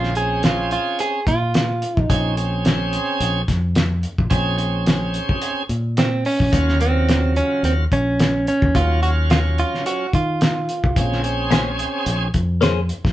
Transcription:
Already playing: fingered electric bass A#1, tonewheel organ C4 C#4 G#4, clean electric guitar F4
0.03 snare
0.15 tonewheel organ C4 C#4 G#4, clean electric guitar G#4, closed hi-hat
0.43 clean electric guitar F4, snare, closed hi-hat
0.71 clean electric guitar F4, closed hi-hat
0.99 clean electric guitar G#4, closed hi-hat
1.27 fingered electric bass A#2, clean electric guitar F4, kick, closed hi-hat
1.54 snare, closed hi-hat
1.82 closed hi-hat
1.97 fingered electric bass A#1, kick
2.02 clean electric guitar D#4
2.09 fingered electric bass A#1, tonewheel organ C4 C#4 G#4, kick, closed hi-hat
2.37 tonewheel organ C4 C#4 G#4, closed hi-hat
2.65 snare, closed hi-hat
2.93 closed hi-hat
3.20 fingered electric bass A#1, closed hi-hat
3.48 fingered electric bass F2, kick, snare, closed hi-hat
3.75 snare, closed hi-hat
4.03 closed hi-hat
4.18 fingered electric bass A#1, kick
4.30 fingered electric bass A#1, tonewheel organ C4 C#4 G#4, kick, closed hi-hat
4.58 tonewheel organ C4 C#4 G#4, closed hi-hat
4.86 snare, closed hi-hat
5.14 closed hi-hat
5.29 kick
5.42 closed hi-hat
5.69 fingered electric bass A#2, closed hi-hat
5.97 clean electric guitar C4, snare, closed hi-hat
6.25 clean electric guitar C#4, open hi-hat
6.40 fingered electric bass A#1, kick
6.52 fingered electric bass D#2, tonewheel organ F#3 C#4 F4, kick, closed hi-hat
6.68 snare
6.80 tonewheel organ C#3 F#3 F4, clean electric guitar C4, closed hi-hat
7.09 snare, closed hi-hat
7.36 clean electric guitar C#4, closed hi-hat
7.63 fingered electric bass D#2, clean electric guitar C4, closed hi-hat
7.92 fingered electric bass A#1, clean electric guitar C#4, kick, closed hi-hat
8.20 snare, closed hi-hat
8.47 clean electric guitar C#4, closed hi-hat
8.62 fingered electric bass D#2, kick
8.75 fingered electric bass D#2, tonewheel organ F#3 C#4 F4, clean electric guitar F4, kick, closed hi-hat
9.02 tonewheel organ F#3 C#4 F4, clean electric guitar F#4, closed hi-hat
9.30 clean electric guitar F4, snare, closed hi-hat
9.58 clean electric guitar F4, closed hi-hat
9.74 snare
9.86 clean electric guitar F#4, closed hi-hat
10.13 fingered electric bass D#3, clean electric guitar F4, kick, closed hi-hat
10.41 snare, closed hi-hat
10.69 closed hi-hat
10.84 fingered electric bass C2, kick
10.96 fingered electric bass A#1, tonewheel organ C4 C#4 G#4, kick, closed hi-hat
11.12 snare
11.23 tonewheel organ C4 C#4 G#4, closed hi-hat
11.51 clean electric guitar A#3 C#4 G#4 C5, snare, closed hi-hat
11.79 closed hi-hat
12.06 fingered electric bass A#1, closed hi-hat
12.34 fingered electric bass F2, kick, closed hi-hat
12.61 clean electric guitar A#3 C#4 G#4 C5, snare, closed hi-hat
12.89 closed hi-hat
13.04 fingered electric bass A#1, kick, snare

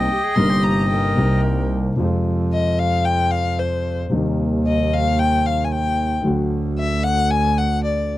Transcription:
Already playing: bandoneon D#5, violin G5
0.11 flute G4
0.24 flute G#4
0.36 grand piano G1 G2 C3 G3 A#3 D#4, double bass G1, flute A#4, violin C6
0.50 flute G4
0.64 violin A#5
0.90 flute A#4, violin G5
1.16 double bass C2, grand piano C2 C3 G3 A#3 D#4
1.96 double bass F2, grand piano F2 C3 F3 G#3
2.00 grand piano F4
2.53 violin D#5
2.79 violin F5
3.05 violin G5
3.31 violin F5
3.59 violin C5
4.10 double bass D#2, grand piano D#2 C3 D#3 G3 A#3
4.14 grand piano D#4
4.68 violin D#5
4.94 violin F5
5.19 violin G5
5.46 violin F5
5.65 violin G#5
5.72 violin G5
6.24 double bass D2, grand piano D2 D3 F#3 A3 F#4
6.79 violin E5
7.04 violin F#5
7.31 violin G#5
7.58 violin F#5
7.85 violin D5

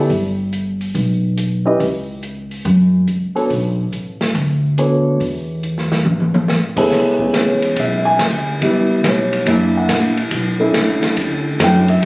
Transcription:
0.09 upright bass G1, kick, open hi-hat
0.53 closed hi-hat
0.81 open hi-hat
0.94 upright bass B1, kick, open hi-hat
1.37 closed hi-hat
1.66 grand piano C#4 E4 G4 B4 D#5
1.80 upright bass C#2, kick, open hi-hat
2.23 closed hi-hat
2.51 open hi-hat
2.65 upright bass F#2, kick, open hi-hat
3.08 upright bass C#2, closed hi-hat
3.35 grand piano B3 D4 F#4 A4 C#5, open hi-hat
3.50 upright bass B1, kick, open hi-hat
3.93 closed hi-hat
4.21 snare, open hi-hat
4.35 upright bass D2, kick, open hi-hat
4.78 grand piano B3 D4 F#4 A4 C#5, closed hi-hat
5.20 upright bass E2, kick, open hi-hat
5.63 closed hi-hat
5.78 snare
5.92 snare
6.05 upright bass A1, mid tom
6.20 mid tom
6.34 mid tom
6.48 snare
6.76 grand piano B3 E4 G#4 A4 C#5, kick, crash
6.91 upright bass C#2, kick, snare
7.19 grand piano G#3 B3 C#4, kick
7.33 upright bass E2, grand piano C#5, snare, hi-hat pedal, ride
7.62 ride
7.76 upright bass B1, grand piano E5, kick, ride
8.05 grand piano G#5
8.19 upright bass D2, kick, snare, hi-hat pedal, ride
8.61 upright bass C#2, grand piano G3 B3 E4, kick, ride
9.04 upright bass B1, kick, snare, hi-hat pedal, ride
9.08 grand piano C#5
9.33 ride
9.46 upright bass F#1, grand piano A#3 D4 E4, kick, ride
9.50 grand piano E5
9.77 grand piano F#5
9.88 upright bass A#1, kick, snare, hi-hat pedal, ride
10.17 ride
10.31 upright bass B1, kick, ride
10.60 grand piano A3 C#4 D4 E4
10.74 upright bass C#2, kick, snare, hi-hat pedal, ride
11.03 muted upright bass stroke, snare, ride
11.16 upright bass D2, kick, ride
11.59 upright bass F#2, grand piano A3 C#4 D4 E4, kick, snare, hi-hat pedal, ride
11.64 grand piano G5
11.88 grand piano E5, ride
12.02 grand piano G3 D4

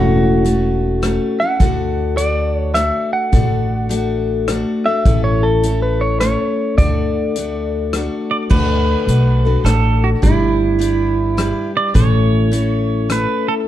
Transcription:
Already playing: upright bass E1, steel-string acoustic guitar A2 E3 A3 C#4 E4 A4, clean electric guitar F#4
0.45 steel-string acoustic guitar A3 C#4 E4 A4, closed hi-hat
1.02 steel-string acoustic guitar A3 C#4 E4 A4, cross-stick, closed hi-hat
1.40 steel-string acoustic guitar A3 C#4 E4 A4, clean electric guitar F#5
1.60 upright bass D2, steel-string acoustic guitar D3 A3 D4 F#4 A4, kick, closed hi-hat
2.17 steel-string acoustic guitar A3 D4 F#4 A4, clean electric guitar D5, closed hi-hat
2.56 clean electric guitar C#5
2.74 steel-string acoustic guitar A3 D4 F#4 A4, clean electric guitar E5, cross-stick, closed hi-hat
3.13 clean electric guitar F#5
3.32 upright bass A1, steel-string acoustic guitar D3 A3 D4 F#4 A4, kick, closed hi-hat
3.89 steel-string acoustic guitar A3 D4 F#4 A4, closed hi-hat
4.48 steel-string acoustic guitar A3 D4 F#4 A4, cross-stick, closed hi-hat
4.86 steel-string acoustic guitar D4 F#4 A4, clean electric guitar E5
5.05 upright bass A1, steel-string acoustic guitar A2 E3 A3 C#4 E4 A4, kick, closed hi-hat
5.24 clean electric guitar C#5
5.43 clean electric guitar A4
5.63 steel-string acoustic guitar A3 C#4 E4 A4, closed hi-hat
5.82 clean electric guitar B4
6.01 clean electric guitar C#5
6.20 steel-string acoustic guitar A3 C#4 E4 A4, clean electric guitar C#5, cross-stick, closed hi-hat
6.78 upright bass D2, steel-string acoustic guitar D3 A3 D4 F#4 A4, clean electric guitar D5, kick, closed hi-hat
7.35 steel-string acoustic guitar A3 D4 F#4 A4, closed hi-hat
7.93 steel-string acoustic guitar A3 D4 F#4 A4, cross-stick, closed hi-hat
8.31 pedal steel guitar D5
8.50 upright bass D2, steel-string acoustic guitar D3 A3 D4 F#4 A4, pedal steel guitar B4, kick, crash
9.07 upright bass B1, steel-string acoustic guitar A3 D4 F#4 A4, closed hi-hat
9.45 steel-string acoustic guitar D4 F#4 A4
9.64 upright bass A1, steel-string acoustic guitar A3 D4 F#4 A4, pedal steel guitar A4, cross-stick, closed hi-hat
10.04 pedal steel guitar F#4
10.22 upright bass G1, steel-string acoustic guitar G3 D4 G4 B4, pedal steel guitar E4, kick, closed hi-hat
10.79 steel-string acoustic guitar G3 D4 G4 B4, closed hi-hat
11.37 steel-string acoustic guitar G3 D4 G4 B4, cross-stick, closed hi-hat
11.77 pedal steel guitar D5
11.94 upright bass A1, steel-string acoustic guitar A2 E3 A3 C#4 E4 A4, pedal steel guitar C#5, kick, closed hi-hat
12.52 steel-string acoustic guitar A3 C#4 E4 A4, closed hi-hat
13.09 steel-string acoustic guitar A3 C#4 E4 A4, pedal steel guitar B4, cross-stick, closed hi-hat
13.48 pedal steel guitar A4

